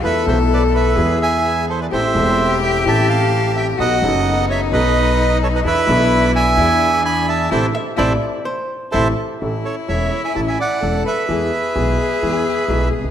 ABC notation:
X:1
M:4/4
L:1/16
Q:1/4=128
K:Am
V:1 name="Bandoneon"
[Be]2 [ce]2 [Bd]2 [Be]4 [e^g]4 [Ac] [Bd] | [ce]6 [eg]2 [ea]2 [fa]4 [eg]2 | [^d^f]6 [^ce]2 [Bd]6 [Ac] [Bd] | [Be]6 [e^g]6 [gb]2 [ea]2 |
[cea]2 z2 [cea]2 z6 [cea]2 z2 | [K:A] z2 [Ac]2 [ce]3 [eg] [ea] [eg] [df]4 [Be]2- | [Be]12- [Be]2 z2 |]
V:2 name="Hollow-body jazz guitar"
z16 | z16 | z16 | z16 |
z2 e2 d4 c4 A4 | [K:A] z16 | z16 |]
V:3 name="Bandoneon"
[B,EA]2 [B,EA]6 [B,E^G]8 | [CEA]2 [CEA]6 [E,CA]8 | [B,^DA]2 [B,DA]6 [B,DA]8 | [DEA]2 [DEA]6 [DE^G]8 |
[CEA]2 z2 [CEA]2 z6 [CEA]2 z2 | [K:A] z16 | z16 |]
V:4 name="Cello"
A8 ^G6 z2 | G16 | ^F4 ^D12 | E8 E4 D4 |
E2 z2 E2 z6 E2 z2 | [K:A] E12 A4 | G16 |]
V:5 name="Grand piano" clef=bass
[E,,E,A,B,A]2 [B,,,B,,E,A,B,A]6 [E,,E,^G,B,^G]8 | [A,,,A,,E,A,CA]2 [E,,,E,,E,A,CA]6 [A,,,A,,E,A,CA]8 | [B,,,B,,^F,B,^DA]2 [^F,,,^F,,F,B,DA]6 [B,,,B,,F,B,DA]8 | [E,,E,B,DA]2 [B,,,B,,E,B,DA]6 [E,,E,B,D^G]8 |
[C,E,A,]2 z2 [C,E,A,]2 z6 [C,E,A,]2 z2 | [K:A] [A,,,A,,E,A,CA]2 z2 [E,,,E,,E,A,CA]2 z2 [A,,,A,,E,A,CA]2 z2 [E,,,E,,E,A,CA]2 z2 | [E,,E,G,B,G]2 z2 [B,,,B,,E,G,B,G]2 z2 [E,,E,G,B,G]2 z2 [B,,,B,,E,G,B,G]2 z/2 =C,,/2 ^C,,/2 z/2 |]
V:6 name="Upright bass" clef=bass
E,,3/2 z/2 B,,,4- B,,,3/2 z/2 E,,6- E,,3/2 z/2 | A,,,3/2 z/2 E,,,4- E,,,3/2 z/2 A,,,6- A,,,3/2 z/2 | B,,,3/2 z/2 ^F,,,4- F,,,3/2 z/2 B,,,6- B,,,3/2 z/2 | E,,3/2 z/2 B,,,4- B,,,3/2 z/2 E,,6- E,,3/2 z/2 |
A,,,3/2 z2 z/2 A,,,3/2 z6 z/2 A,,,3/2 z2 z/2 | [K:A] A,,,3/2 z2 z/2 E,,,3/2 z2 z/2 A,,,3/2 z2 z/2 E,,,3/2 z2 z/2 | E,,3/2 z2 z/2 B,,,3/2 z2 z/2 E,,3/2 z2 z/2 B,,,3/2 z =C,,/2 ^C,,/2 z/2 |]